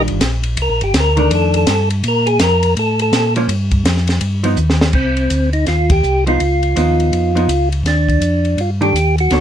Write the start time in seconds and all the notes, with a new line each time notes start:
Already playing: D#3 G3 D4 F4
0.08 G1, ride
0.20 A#1, snare, hi-hat pedal, ride
0.43 ride
0.57 C2, ride
0.62 A#4
0.69 A#1
0.81 G1 G4, ride
0.94 D2, snare, hi-hat pedal, ride
1.00 A#4
1.17 D#3 A3 D4, ride
1.31 F2, ride
1.35 A4
1.54 A4, ride
1.67 G2, snare, hi-hat pedal, ride
1.90 ride
2.04 A#2, ride
2.08 A#4
2.26 G#4, ride
2.39 F2 A#4, snare, hi-hat pedal, ride
2.63 ride
2.77 A2 A4, ride
2.99 A4, ride
3.13 A#2, snare, hi-hat pedal, ride
3.36 F3 A#3 C#4, ride
3.48 G2, ride
3.71 kick, ride
3.84 F2, snare, hi-hat pedal, ride
3.97 snare
4.07 snare, ride
4.21 G2, ride
4.43 F3 B3 D#4, ride
4.56 D#2, hi-hat pedal
4.70 snare
4.81 snare
4.93 C2 C4, kick, crash
5.17 ride
5.30 D2, hi-hat pedal, ride
5.53 D#4, ride
5.66 D#2 F4, snare, ride
5.90 G4, kick, ride
6.03 C2, hi-hat pedal
6.27 F3 B3 D#4 F4, ride
6.40 C#2, ride
6.63 ride
6.76 D#2 F3 B3 D#4, hi-hat pedal, ride
7.00 ride
7.12 F2, ride
7.35 F3 B3 D#4, ride
7.48 C#2, hi-hat pedal, ride
7.72 ride
7.84 D#2 D4, snare, ride
8.09 kick, ride
8.21 F2, hi-hat pedal, ride
8.45 ride
8.57 G2 F4, ride
8.81 D#3 A3 D4 G4, ride
8.93 D#2, hi-hat pedal, ride
9.18 F#4, ride
9.30 D2 B3 D4 A4 C#5, snare, ride